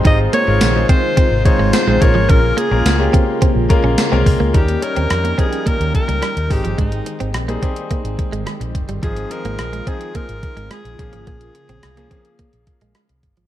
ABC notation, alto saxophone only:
X:1
M:4/4
L:1/8
Q:1/4=107
K:Bbdor
V:1 name="Alto saxophone"
e d2 c2 d c d | B A2 z4 z | G B2 A B B2 G | E2 z6 |
A B2 A B2 A2 | A6 z2 |]